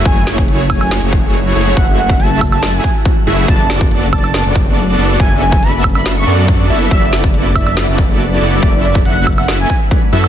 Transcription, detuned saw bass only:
\new Staff \with { instrumentName = "Detuned saw bass" } { \clef bass \time 4/4 \key e \mixolydian \tempo 4 = 140 fis,,2~ fis,,16 fis,,4~ fis,,16 fis,,8 | fis,,2~ fis,,8 r4 fis,,8 | fis,,2~ fis,,16 fis,,4~ fis,,16 fis,,8 | fis,,2~ fis,,8 fis,8. fis,16 fis,,8 |
fis,,2~ fis,,16 fis,,4~ fis,,16 fis,,8 | fis,,2~ fis,,8 r4 fis,8 | }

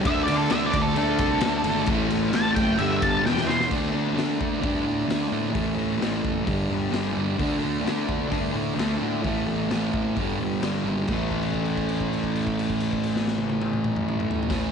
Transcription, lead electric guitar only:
\new Staff \with { instrumentName = "Lead electric guitar" } { \time 4/4 \key d \mixolydian \tempo 4 = 130 \tuplet 3/2 { e''8 d''8 a'8 e''8 d''8 a'8 } a'2 | r4 a''8 g''8 e''8 a''8 g''8 c''8 | r1 | r1 |
r1 | r1 | r1 | r1 | }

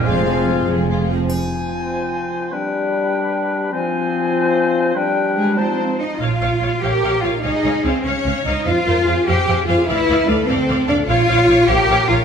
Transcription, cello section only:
\new Staff \with { instrumentName = "Cello section" } { \time 6/8 \key f \dorian \tempo 4. = 98 f,4. f,4. | r2. | r2. | r2. |
r4 aes8 c'4 ees'8 | \key bes \dorian f'4. g'4 f'8 | ees'4 c'8 des'4 ees'8 | f'4. g'4 f'8 |
e'4 a8 c'4 d'8 | f'4. g'4 f'8 | }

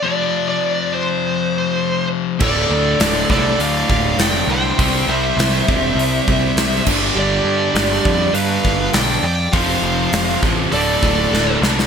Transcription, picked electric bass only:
\new Staff \with { instrumentName = "Picked electric bass" } { \clef bass \time 4/4 \key d \minor \tempo 4 = 101 r1 | d,,8 d,8 d,,8 c,8 d,8 d,,8 f,,8 c,8 | c,8 c,8 c,8 e,,8 c,8 c,8 c,8 g,,8 | g,,8 g,8 g,,8 f,8 g,8 g,,8 b,,8 f,8 |
f,,8 f,,8 f,,8 a,,8 d,,8 d,,8 d,,8 c,8 | }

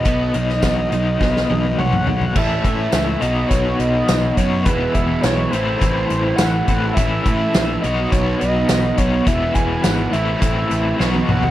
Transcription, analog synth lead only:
\new Staff \with { instrumentName = "Analog synth lead" } { \time 4/4 \key b \mixolydian \tempo 4 = 104 dis''2. fis''4 | e''8 e''4 dis''8 cis''8 dis''4 cis''8 | b'8 e''8 cis''8 c''8 c''4 fis''4 | e''8 e''4 dis''8 cis''8 dis''4 cis''8 |
e''8 gis''8 fis''8 e''8 e''4 r8 fis''8 | }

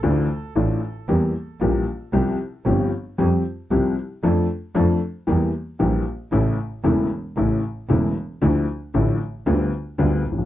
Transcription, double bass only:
\new Staff \with { instrumentName = "Double bass" } { \clef bass \time 4/4 \key d \minor \tempo 4 = 114 d,8 r8 a,,8 r8 e,8 r8 bes,,8 r8 | c,8 r8 g,,8 r8 f,8 r8 c,8 r8 | f,8 r8 f,8 r8 e,8 r8 bes,,8 r8 | a,,8 r8 e,,8 r8 a,,8 r8 e,,8 r8 |
d,8 r8 a,,8 r8 d,8 r8 d,8 bes,,8 | }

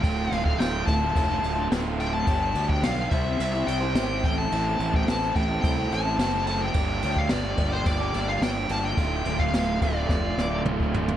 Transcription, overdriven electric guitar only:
\new Staff \with { instrumentName = "Overdriven electric guitar" } { \time 4/4 \key d \minor \tempo 4 = 107 <d, a, d a f'>8 <a, d a f'>16 <d a f'>16 <d, a, d a f'>8 <a, d a f'>16 <d a f'>8 <d a f'>8 <d a f'>16 <d, a, d a f'>8 <a, d a f'>16 <d a f'>16 | <g, d g b d' g'>8 <g b d' g'>16 <g b d' g'>16 <g, d g b d' g'>8 <c g c' e' g' c''>16 <c' e' g' c''>8 <c' e' g' c''>8 <c' e' g' c''>16 <c g c' e' g' c''>8 <a, e a c' e' a'>16 <a c' e' a'>16 | <a, e a c' e' a'>8 <a c' e' a'>16 <a c' e' a'>16 <a, e a c' e' a'>8 <a c' e' a'>16 <a c' e' a'>8 <a c' e' a'>8 <a c' e' a'>16 <a, e a c' e' a'>8 <a c' e' a'>16 <a c' e' a'>16 | <g, d g bes d' g'>8 <g bes d' g'>16 <g bes d' g'>16 <g, d g bes d' g'>8 <g bes d' g'>16 <g bes d' g'>8 <g bes d' g'>8 <g bes d' g'>16 <g, d g bes d' g'>8 <g bes d' g'>16 <g bes d' g'>16 |
<d, a, d a f'>8 <a, d a f'>16 <d a f'>16 <d, a, d a f'>8 <a, d a f'>16 <d a f'>8 <d a f'>8 <d a f'>16 <d, a, d a f'>8 <a, d a f'>16 <d a f'>16 | }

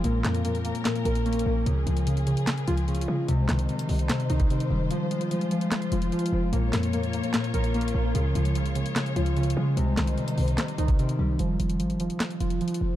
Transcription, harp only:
\new Staff \with { instrumentName = "Harp" } { \clef bass \time 4/4 \key f \minor \tempo 4 = 148 bes,8 f8 bes,4 bes,8 f8 des'8 bes8 | des8 f8 des4 des8 f8 des'8 aes8 | c8 ees8 c4 c8 ees8 c'8 g8 | f8 aes8 f4 f8 aes8 f'8 c'8 |
bes,8 f8 bes,4 bes,8 f8 des'8 bes8 | des8 f8 des4 des8 f8 des'8 aes8 | c8 ees8 c4 c8 ees8 c'8 g8 | r1 | }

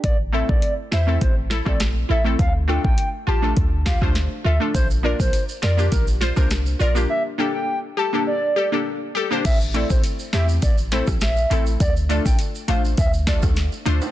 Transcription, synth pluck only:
\new Staff \with { instrumentName = "Synth pluck" } { \time 4/4 \key a \phrygian \tempo 4 = 102 r8 <a c' e' a'>16 r8. <e' c''>16 <a c' e' a'>16 r8 <e' a'>16 <a c' e' a'>16 r8 <e' a'>16 <a c' e' a'>16 | r8 <a d' f' a'>16 r8. <f' g'>16 <a d' f' a'>16 r8 <f' g'>16 <a d' f' c''>16 r8 <f' a'>16 <a d' f' a'>16 | r8 <bes d' f' bes'>16 r8. <f' bes'>16 <bes d' f' g'>16 r8 <f' c''>16 <bes d' f' bes'>16 r8 <f' bes'>16 <bes d' f' g'>16 | r8 <bes d' g' a'>16 r8. <g' a'>16 <bes d' g' a'>16 r8 <g' a'>16 <bes d' g' a'>16 r8 <g' a'>16 <bes d' g' c''>16 |
r8 <a c' e' a'>16 r8. <a c' e' g'>16 r8. <a c' e' a'>16 r8. <a c' e' a'>16 r16 | r8 <a d' f' a'>16 r8. <a d' f' c''>16 r8. <a d' f' a'>16 r8. <a d' f' c''>16 r16 | }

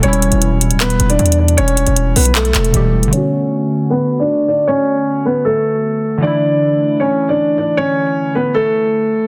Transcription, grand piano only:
\new Staff \with { instrumentName = "Grand piano" } { \time 4/4 \key b \minor \tempo 4 = 155 <cis' cis''>2 <b b'>8. <d' d''>8. <d' d''>8 | <cis' cis''>4. <b b'>8 <a a'>2 | <cis' cis''>2 <b b'>8. <d' d''>8. <d' d''>8 | <cis' cis''>4. <b b'>8 <a a'>2 |
<d' d''>2 <cis' cis''>8. <d' d''>8. <d' d''>8 | <cis' cis''>4. <b b'>8 <a a'>2 | }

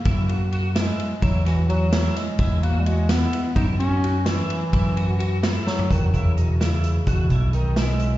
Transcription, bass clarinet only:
\new Staff \with { instrumentName = "Bass clarinet" } { \clef bass \time 5/8 \key e \major \tempo 4 = 128 r4. gis4 | fis8 e8 fis4 gis8~ | gis8 ais16. g32 gis8 b4 | dis'8 cis'4 e4~ |
e4. r8 fis8 | dis8 cis8 b,8 cis4 | b,4 dis8 gis4 | }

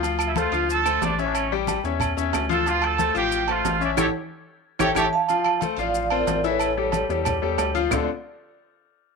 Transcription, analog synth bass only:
\new Staff \with { instrumentName = "Analog synth bass" } { \clef bass \time 4/4 \key d \minor \tempo 4 = 182 d,4. d,4. a,,4~ | a,,4. e,4 e,8 d,4~ | d,4. a,,4. a,,4 | a,,8 r2 a,,8 a,,8 r8 |
r4. a,,4. a,,4~ | a,,4. e,4 e,8 d,4 | d,8 r2. r8 | }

